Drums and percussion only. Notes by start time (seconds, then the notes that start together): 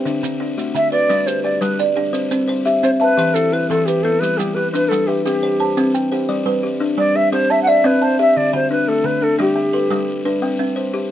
0.06 maracas
0.24 maracas
0.59 maracas
0.76 maracas
1.10 maracas
1.28 maracas
1.62 maracas
1.80 maracas
2.14 maracas
2.32 maracas
2.66 maracas
2.84 maracas
3.18 maracas
3.35 maracas
3.71 maracas
3.88 maracas
4.23 maracas
4.40 maracas
4.75 maracas
4.92 maracas
5.27 maracas
5.78 maracas
5.95 maracas